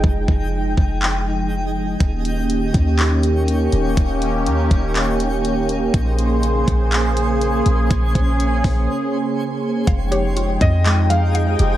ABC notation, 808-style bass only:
X:1
M:4/4
L:1/8
Q:1/4=122
K:Fm
V:1 name="808-style bass" clef=bass
F,,, F,,,2 F,,,4- F,,, | E,,,3 E,,4 E,,, | E,,,2 E,, E,,,4- E,,, | B,,,3 B,,,4 B,,, |
B,,, B,,,2 B,,, z4 | F,,,3 F,,4 F,,, |]